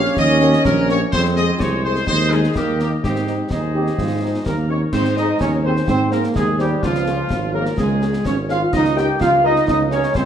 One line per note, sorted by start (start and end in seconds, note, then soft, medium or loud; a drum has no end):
0.00 1.13 C#4 loud
0.00 1.08 G4 medium
0.00 1.08 C#5 medium
0.00 0.13 F5 loud
0.05 snare soft
0.17 0.57 D#2 medium
0.17 0.61 D#5 loud
0.17 concert bass drum medium
0.17 snare medium
0.40 0.49 A#3 medium
0.40 0.49 C#4 medium
0.40 0.49 G4 medium
0.40 snare medium
0.53 snare medium
0.65 1.05 A#1 medium
0.65 0.87 A#4 medium
0.65 concert bass drum medium
0.65 snare medium
0.89 0.98 A#3 medium
0.89 0.98 C#4 medium
0.89 0.98 G4 medium
0.89 1.00 C#5 medium
0.89 snare medium
1.12 1.52 F2 medium
1.12 1.57 C4 medium
1.12 2.04 G#4 medium
1.12 1.23 C5 loud
1.12 2.04 C5 medium
1.12 concert bass drum medium
1.12 snare medium
1.12 crash soft
1.25 snare medium
1.36 1.45 G#3 medium
1.36 1.45 C4 medium
1.36 1.45 G#4 medium
1.36 1.59 D#5 medium
1.36 snare medium
1.60 2.00 C2 medium
1.60 2.51 G#3 medium
1.60 1.84 C#5 medium
1.60 concert bass drum medium
1.60 snare medium
1.83 1.93 G#3 medium
1.83 1.93 C4 medium
1.83 1.93 G#4 medium
1.83 2.06 C5 medium
1.96 snare soft
2.07 2.47 D#2 medium
2.07 2.52 G#4 medium
2.07 2.29 C5 loud
2.07 2.55 D#5 medium
2.07 concert bass drum medium
2.07 snare medium
2.32 2.40 G#3 medium
2.32 2.40 D#4 medium
2.32 2.55 G#4 medium
2.32 2.40 G#4 medium
2.32 snare medium
2.44 snare soft
2.55 2.95 D#2 medium
2.55 3.03 A#3 medium
2.55 2.77 G4 medium
2.55 3.00 A#4 medium
2.55 3.00 D#5 medium
2.55 concert bass drum medium
2.55 snare medium
2.79 2.87 A#3 medium
2.79 2.88 D#4 medium
2.79 2.90 G4 medium
2.79 snare medium
3.03 3.42 G#2 medium
3.03 3.43 C4 medium
3.03 3.47 G4 medium
3.03 3.38 C5 medium
3.03 3.38 D#5 soft
3.03 concert bass drum medium
3.03 snare medium
3.16 snare medium
3.27 3.35 C4 medium
3.27 3.35 D#4 medium
3.27 snare soft
3.49 3.90 D#2 medium
3.49 3.60 D#4 medium
3.49 4.45 G#4 medium
3.49 4.42 C5 medium
3.49 4.42 D#5 soft
3.49 concert bass drum medium
3.49 snare medium
3.74 3.84 C4 soft
3.74 3.84 D#4 soft
3.74 3.96 G4 medium
3.87 snare soft
3.97 4.37 G#2 medium
3.97 4.21 F4 medium
3.97 concert bass drum medium
3.97 snare medium
4.21 4.30 C4 soft
4.21 4.44 D#4 medium
4.21 4.30 D#4 medium
4.45 4.85 D#2 medium
4.45 4.67 A#3 medium
4.45 4.57 A#3 medium
4.45 4.56 D#4 medium
4.45 4.56 A#4 medium
4.45 4.67 A#4 medium
4.45 concert bass drum medium
4.45 snare medium
4.68 4.78 C4 soft
4.68 4.79 C#4 medium
4.68 4.78 D#4 soft
4.68 4.80 C#5 medium
4.92 5.33 G#2 medium
4.92 5.15 C4 medium
4.92 5.03 C4 medium
4.92 5.04 C5 medium
4.92 5.15 C5 medium
4.92 concert bass drum medium
4.92 snare medium
4.92 crash soft
5.05 snare medium
5.16 5.26 D#4 medium
5.16 5.39 D#4 medium
5.16 5.26 G#4 medium
5.16 5.26 C5 medium
5.16 5.38 D#5 medium
5.16 5.39 D#5 medium
5.16 snare medium
5.40 5.80 D#2 medium
5.40 5.51 C#4 medium
5.40 5.63 C#4 medium
5.40 5.51 C#5 medium
5.40 5.52 C#5 medium
5.40 concert bass drum medium
5.40 snare medium
5.63 5.74 C4 medium
5.63 5.75 C4 medium
5.63 5.73 G#4 medium
5.63 5.75 C5 medium
5.63 5.73 C5 medium
5.63 5.87 C5 medium
5.76 snare soft
5.88 6.27 G#2 medium
5.88 6.10 C4 medium
5.88 5.99 C5 medium
5.88 6.11 C5 medium
5.88 concert bass drum medium
5.88 snare medium
6.11 6.37 A#3 medium
6.11 6.36 A#3 medium
6.11 6.21 G#4 medium
6.11 6.23 A#4 medium
6.11 6.21 C5 medium
6.11 snare medium
6.24 snare medium
6.35 6.75 D#2 medium
6.35 6.46 G#3 medium
6.35 6.59 G#3 medium
6.35 6.46 G#4 medium
6.35 6.58 G#4 medium
6.35 concert bass drum medium
6.35 snare medium
6.59 6.81 G3 medium
6.59 6.70 G3 medium
6.59 6.70 G4 medium
6.59 6.81 G4 medium
6.59 6.68 G#4 medium
6.59 6.68 C5 medium
6.59 snare medium
6.83 7.23 C#2 medium
6.83 7.54 F3 medium
6.83 7.57 F3 medium
6.83 7.50 F4 medium
6.83 7.54 F4 medium
6.83 concert bass drum medium
6.83 snare medium
6.95 snare medium
7.06 7.15 G#4 medium
7.06 7.15 C#5 medium
7.06 snare medium
7.30 7.70 G#1 medium
7.30 concert bass drum medium
7.30 snare medium
7.53 7.65 A#3 medium
7.53 7.79 A#3 medium
7.53 7.62 G#4 medium
7.53 7.65 A#4 medium
7.53 7.76 A#4 medium
7.53 7.62 C#5 medium
7.66 snare soft
7.78 8.18 C#2 medium
7.78 8.22 G#3 medium
7.78 8.23 G#3 medium
7.78 8.22 G#4 medium
7.78 concert bass drum medium
7.78 snare medium
8.01 8.10 G#4 medium
8.01 8.10 C#5 medium
8.01 snare medium
8.13 snare medium
8.25 8.65 G#1 medium
8.25 8.36 C#4 medium
8.25 8.37 C#4 medium
8.25 8.36 C#5 medium
8.25 concert bass drum medium
8.25 snare medium
8.49 8.61 F4 medium
8.49 8.74 F4 medium
8.49 8.58 G#4 medium
8.49 8.57 C#5 medium
8.49 8.72 F5 medium
8.49 8.61 F5 medium
8.49 snare medium
8.73 9.12 C#2 medium
8.73 8.95 D#4 medium
8.73 8.96 D#4 loud
8.73 8.84 D#5 medium
8.73 8.95 D#5 medium
8.73 concert bass drum medium
8.73 snare medium
8.73 crash soft
8.85 snare medium
8.96 9.06 G4 medium
8.96 9.05 G4 medium
8.96 9.21 G4 loud
8.96 9.05 A#4 medium
8.96 9.05 D#5 medium
8.96 9.19 G5 medium
8.96 9.08 G5 medium
8.96 snare medium
9.20 9.60 C#2 medium
9.20 9.42 F4 medium
9.20 9.43 F4 loud
9.20 9.31 F5 medium
9.20 9.43 F5 medium
9.20 concert bass drum medium
9.20 snare medium
9.43 9.66 D#4 medium
9.43 9.67 D#4 loud
9.43 9.53 G4 medium
9.43 9.53 A#4 medium
9.43 9.66 D#5 medium
9.43 9.53 D#5 medium
9.43 9.66 D#5 medium
9.56 snare soft
9.67 10.08 C#2 medium
9.67 9.90 D#4 medium
9.67 9.79 D#4 medium
9.67 9.78 D#5 medium
9.67 concert bass drum medium
9.67 snare medium
9.91 10.02 C#4 medium
9.91 10.14 C#4 medium
9.91 10.00 G4 medium
9.91 10.00 A#4 medium
9.91 10.14 C#5 medium
9.91 10.03 C#5 medium
9.91 10.01 D#5 medium
9.91 snare medium
10.03 snare medium
10.15 10.25 C#2 medium
10.15 10.25 C4 medium
10.15 10.25 C5 medium
10.15 concert bass drum medium
10.15 snare medium